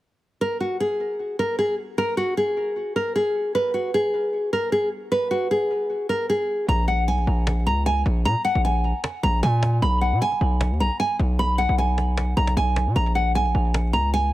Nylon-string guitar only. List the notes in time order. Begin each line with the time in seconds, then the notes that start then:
0.41 A#4
0.60 F#4
0.80 G#4
1.39 A#4
1.59 G#4
1.98 A#4
2.17 F#4
2.37 G#4
2.96 A#4
3.16 G#4
3.55 B4
3.74 F#4
3.94 G#4
4.53 A#4
4.72 G#4
5.12 B4
5.31 F#4
5.51 G#4
6.09 A#4
6.30 G#4
6.69 A#5
6.88 F#5
7.08 G#5
7.67 A#5
7.86 G#5
8.25 A#5
8.45 F#5
8.65 G#5
9.23 A#5
9.43 G#5
9.82 B5
10.01 F#5
10.22 G#5
10.80 A#5
11.00 G#5
11.39 B5
11.58 F#5
11.78 G#5
12.37 A#5
12.57 G#5
12.96 A#5
13.15 F#5
13.35 G#5
13.93 A#5
14.14 G#5